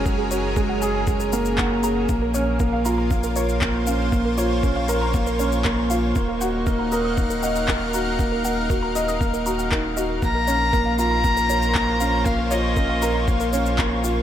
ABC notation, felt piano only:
X:1
M:4/4
L:1/8
Q:1/4=118
K:Bbm
V:1 name="Felt piano"
A, G A, A A, B, B, A | B, D B, F B, B B, D | B, F D B B, D B, F | B, G B, B B, e B, G |
B, B G e B, G E G | B, D B, F B, B B, D | B, F D B B, D B, F |]